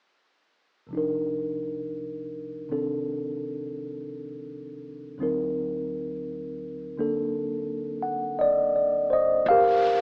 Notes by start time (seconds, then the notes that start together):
0.87 C2 C3 F3
0.93 D4 D#4
0.97 A#4
2.69 C3 D#3 C4 D4 A4
5.18 D2 D3 F#3 C4 D#4
5.23 A#4
6.97 D3 A#3 D4 A4
8.02 F#5
8.39 D5 D#5
8.76 D5
9.10 C5 D#5
9.45 G1 F5, brush sweep
9.50 G4 A#4